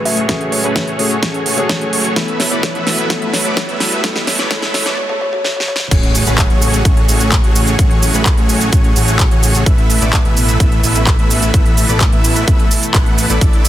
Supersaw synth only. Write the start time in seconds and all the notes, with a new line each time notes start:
Already playing: A3 C#4 F#4 G#4 C#5
0.29 A3 C#4 F#4 G#4 C#5
0.64 A3 C#4 F#4 G#4 B4
0.87 A3 C#4 F#4 G#4 C#5
1.23 A3 C#4 F#4 G#4 C#5
1.46 A3 C#4 F#4 G#4 C#5
1.81 A3 C#4 F#4 G#4 C#5
2.16 A3 B3 E4 B4 E5
2.51 A3 B3 E4 B4 D5
2.75 A3 B3 E4 B4 E5
3.10 A3 B3 E4 B4 E5
3.45 A3 B3 E4 B4 D5
3.69 A3 B3 E4 B4 E5
4.04 A3 B3 E4 B4 E5
4.39 A3 B3 E4 B4 D5
4.51 A3 B3 E4 B4 E5
4.86 A3 B3 E4 B4 D5
5.91 A3 C#4 F#4 G#4 C#5
6.27 A3 C#4 F#4 G#4 B4
6.50 A3 C#4 F#4 G#4 C#5
6.85 A3 C#4 F#4 G#4 C#5
7.09 A3 C#4 F#4 G#4 C#5
7.44 A3 C#4 F#4 G#4 C#5
7.79 A3 C#4 F#4 G#4 C#5
8.14 A3 C#4 F#4 G#4 B4
8.37 A3 C#4 F#4 G#4 C#5
8.73 A3 C#4 F#4 G#4 C#5
8.96 A3 C#4 F#4 G#4 C#5
9.31 A3 C#4 F#4 G#4 C#5
9.66 A3 B3 E4 B4 E5
10.02 A3 B3 E4 B4 D5
10.25 A3 B3 E4 B4 E5
10.60 A3 B3 E4 B4 E5
10.84 A3 B3 E4 B4 E5
11.19 A3 B3 E4 B4 E5
11.54 A3 B3 E4 B4 E5
11.89 A3 B3 E4 B4 D5
12.12 A3 B3 E4 B4 E5
12.48 A3 B3 E4 B4 E5
12.95 A3 B3 E4 B4 F#5
13.30 A3 B3 E4 B4 D5
13.41 A3 D4 E4 D5 E5